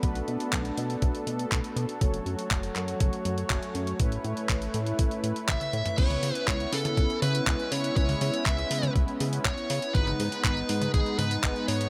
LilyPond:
<<
  \new Staff \with { instrumentName = "Lead electric guitar" } { \time 4/4 \key a \mixolydian \tempo 4 = 121 r1 | r1 | r2. e''4 | \key cis \minor cis''4 cis''8 a'4 b'4 cis''8 |
cis''4 e''4 r4 cis''4 | b'4 b'4 gis'8 b'4 cis''8 | }
  \new Staff \with { instrumentName = "Analog polysynth" } { \time 4/4 \key a \mixolydian <a d' fis' b'>2. <a d' fis' b'>4 | <a cis' fis' cis''>2. <a cis' fis' cis''>4 | <a cis' e' b'>2. r4 | \key cis \minor <b cis' e' b'>2. <gis cis' e' b'>4 |
<gis cis' e' b'>2. r4 | <gis b dis' b'>2. <gis b dis' b'>4 | }
  \new Staff \with { instrumentName = "Analog synth pad" } { \time 4/4 \key a \mixolydian << { a'1 | cis''1~ | cis''1 | \key cis \minor e'1~ |
e'1 | dis'1 | } \\ { <b d'>1 | <fis fis'>1 | <a e' b'>1 | <b cis'>1~ |
<b cis'>1 | gis1 | } >> }
  \new Staff \with { instrumentName = "Analog synth bass" } { \clef bass \time 4/4 \key a \mixolydian b,,8 b,8 b,,8 b,8 b,,8 b,8 b,,8 b,8 | fis,,8 fis,8 fis,,8 fis,8 fis,,8 fis,8 fis,,8 fis,8 | a,,8 a,8 a,,8 a,8 a,,8 a,8 a,,8 a,8 | \key cis \minor cis,8 cis8 cis,8 cis8 cis,8 cis8 cis,8 cis8 |
cis,8 cis8 cis,8 cis8 cis,8 cis8 cis,8 cis8 | gis,,8 gis,8 gis,,8 gis,8 gis,,8 gis,8 gis,,8 gis,8 | }
  \new DrumStaff \with { instrumentName = "Drums" } \drummode { \time 4/4 <hh bd>16 hh16 hh16 hh16 <hc hh bd>16 hh16 hh16 hh16 <hh bd>16 hh16 hh16 hh16 <hc hh bd>16 hh16 hh16 hh16 | <hh bd>16 hh16 hh16 hh16 <hc hh bd>16 hh16 <hc hh>16 hh16 <hh bd>16 hh16 hh16 hh16 <hc hh bd>16 hh16 hh16 hh16 | <hh bd>16 hh16 hh16 hh16 <hc hh bd>16 hh16 hh16 hh16 <hh bd>16 hh16 hh16 hh16 <hc hh bd tommh>16 <hh tommh>16 hh16 <hh toml>16 | <cymc hh bd>16 <hh tommh>16 hho16 hh16 <hc hh bd>16 hh16 hho16 <hh tommh>16 <hh bd>16 hh16 <hho tommh>16 hh16 <hc hh bd>16 hh16 hho16 hh16 |
<hh bd>16 <hho tommh>16 hho16 hh16 <hc hh bd>16 hh16 hho16 <hh tommh>16 <hh bd>16 hh16 hho16 hh16 <hc hh bd>16 hh16 hho16 hh16 | <hh bd>16 <hh tommh>16 hho16 hh16 <hc hh bd>16 hh16 hho16 <hh tommh>16 <hh bd>16 hh16 <hho tommh>16 hh16 <hc hh bd>16 hh16 hho16 hh16 | }
>>